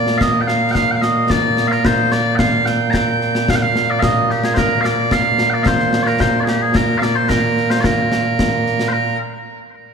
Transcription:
Already playing: bagpipes A#2 A#3 D5
0.07 snare
0.18 bagpipes D#5 F5, concert bass drum, snare
0.41 bagpipes G5
0.47 bagpipes F5, snare
0.71 bagpipes F5 G5, concert bass drum, snare
0.92 bagpipes G5
0.96 bagpipes F5
1.02 bagpipes D#5, snare
1.30 bagpipes D5, concert bass drum, snare
1.57 snare
1.67 bagpipes F5, snare
1.72 bagpipes A#4
1.85 bagpipes C5, concert bass drum, snare
2.12 bagpipes D5, snare
2.36 bagpipes F5 G5, concert bass drum, snare
2.66 bagpipes G5, snare
2.90 bagpipes G5 A#5, concert bass drum, snare
3.21 snare
3.35 snare
3.48 bagpipes F5, concert bass drum, snare
3.56 bagpipes G5
3.62 bagpipes F5
3.75 snare
3.90 bagpipes D5
3.99 bagpipes D#5 F5, concert bass drum, snare
4.30 bagpipes G4, snare
4.43 bagpipes G#4, snare
4.54 bagpipes A#4 C5, concert bass drum, snare
4.81 bagpipes D5 F5, snare
5.11 bagpipes F5, concert bass drum, snare
5.38 snare
5.50 bagpipes D5 G5
5.63 bagpipes C5 F5, concert bass drum, snare
5.80 snare
5.93 snare
6.03 bagpipes A#4 D5, snare
6.20 bagpipes C5, concert bass drum, snare
6.40 bagpipes G#4 D5
6.47 bagpipes G4, snare
6.62 bagpipes G#4
6.75 bagpipes A#4, concert bass drum, snare
6.98 bagpipes D5 F5, snare
7.16 bagpipes C5
7.29 bagpipes A#4, concert bass drum, snare
7.57 snare
7.70 bagpipes C5, snare
7.81 bagpipes A#4 D5, concert bass drum, snare
8.12 snare
8.39 concert bass drum, snare
8.66 snare
8.79 snare
8.88 bagpipes C5
8.93 bagpipes A#4

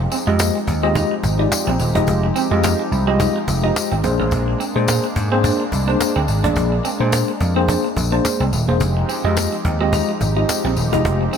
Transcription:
Already playing: analog synth pad F3 G#3 C4 D#4 G4
0.11 clean electric guitar C4, cajon slap, tambourine
0.27 slap bass F2, tine electric piano G#3 F4 G4 D#5, clean electric guitar G#3
0.39 clean electric guitar A#3, cajon slap, tambourine
0.55 muted clean electric guitar stroke
0.67 slap bass D#2, cajon bass, tambourine
0.83 tine electric piano G#3 F4 G4 D#5, clean electric guitar C4
0.95 clean electric guitar D#4, cajon bass, tambourine
1.11 muted clean electric guitar stroke
1.23 slap bass G#1, cajon bass, tambourine
1.39 tine electric piano G#3 F4 G4 D5, clean electric guitar D#4, cajon slap
1.52 cajon slap, tambourine
1.67 slap bass A#1, clean electric guitar C4
1.79 slap bass D#1, muted clean electric guitar stroke, tambourine
1.95 slap bass E1, tine electric piano G#3 F4 G4 D#5, clean electric guitar D#4, cajon bass
2.07 slap bass F1, cajon bass, tambourine
2.23 muted clean electric guitar stroke
2.35 clean electric guitar C4, cajon slap, tambourine
2.51 slap bass F2, tine electric piano G#3 F4 G4 D#5, clean electric guitar G#3, cajon slap
2.63 clean electric guitar A#3, cajon slap, tambourine
2.79 muted clean electric guitar stroke
2.91 slap bass C2, cajon slap, tambourine
3.07 tine electric piano G#3 F4 G4 D#5, clean electric guitar C4, cajon slap
3.20 clean electric guitar D#4, cajon bass, tambourine
3.36 muted clean electric guitar stroke
3.48 slap bass F1, cajon bass, tambourine
3.63 tine electric piano G#3 F4 G4 D#5, clean electric guitar D#4
3.76 cajon slap, tambourine
3.92 slap bass G#1, clean electric guitar C4
4.03 slap bass A#1, analog synth pad G#3 A#3 D4, tine electric piano A#3 D4 G#4 C5, muted clean electric guitar stroke, cajon bass, tambourine
4.20 slap bass A1, clean electric guitar A#3
4.31 slap bass A#1, cajon bass, tambourine
4.48 muted clean electric guitar stroke
4.60 clean electric guitar C4, cajon slap, tambourine
4.75 slap bass A#2, clean electric guitar G#3, tine electric piano A#3 D4 G#4 C5, cajon slap
4.88 clean electric guitar A#3, cajon slap, tambourine
5.04 muted clean electric guitar stroke
5.16 slap bass G#2, cajon bass, tambourine
5.32 tine electric piano A#3 D4 G#4 C5, clean electric guitar C4, cajon slap
5.44 clean electric guitar D4, cajon bass, tambourine
5.60 muted clean electric guitar stroke
5.72 slap bass C2, cajon bass, tambourine
5.88 tine electric piano A#3 D4 G#4 C5, clean electric guitar D4, cajon slap
6.00 cajon slap, tambourine
6.16 slap bass D2, clean electric guitar C4
6.28 slap bass G#1, muted clean electric guitar stroke, tambourine
6.44 slap bass A1, tine electric piano A#3 D4 G#4 D5, clean electric guitar D4, cajon bass
6.56 slap bass A#1, cajon bass, tambourine
6.72 muted clean electric guitar stroke, cajon slap
6.84 clean electric guitar C4, cajon slap, tambourine
7.00 slap bass A#2, clean electric guitar G#3, tine electric piano A#3 D4 G#4 C5
7.12 clean electric guitar A#3, cajon slap, tambourine
7.28 muted clean electric guitar stroke, cajon slap
7.40 slap bass F2, cajon bass, tambourine
7.56 tine electric piano A#3 D4 G#4 C5, clean electric guitar C4, cajon slap
7.68 clean electric guitar D4, cajon bass, tambourine
7.84 muted clean electric guitar stroke
7.96 slap bass A#1, cajon bass, tambourine
8.12 tine electric piano A#3 D4 G#4 C5, clean electric guitar D4
8.25 cajon slap, tambourine
8.40 slap bass C2, clean electric guitar C4, cajon slap
8.52 slap bass D#1, muted clean electric guitar stroke, cajon slap, tambourine
8.68 slap bass E1, tine electric piano A#3 D4 G#4 C5, clean electric guitar A#3, cajon slap
8.80 slap bass F1, analog synth pad F3 G#3 C4 D#4 G4, cajon bass, tambourine
8.97 muted clean electric guitar stroke
9.08 clean electric guitar C4, cajon slap, tambourine
9.24 slap bass F2, tine electric piano G#3 F4 G4 D#5, clean electric guitar G#3, cajon slap
9.37 clean electric guitar A#3, cajon slap, tambourine
9.52 muted clean electric guitar stroke
9.65 slap bass D#2, cajon bass
9.80 tine electric piano G#3 F4 G4 D#5, clean electric guitar C4, cajon slap
9.93 clean electric guitar D#4, cajon bass, tambourine
10.09 muted clean electric guitar stroke
10.21 slap bass G#1, cajon bass, tambourine
10.36 tine electric piano G#3 F4 G4 D#5, clean electric guitar D#4, cajon slap
10.49 cajon slap, tambourine
10.64 slap bass A#1, clean electric guitar C4
10.77 slap bass D#1, muted clean electric guitar stroke, tambourine
10.92 slap bass E1, tine electric piano G#3 F4 G4 D#5, clean electric guitar D#4, cajon bass
11.05 slap bass F1, cajon bass
11.21 muted clean electric guitar stroke
11.32 clean electric guitar C4, cajon slap, tambourine

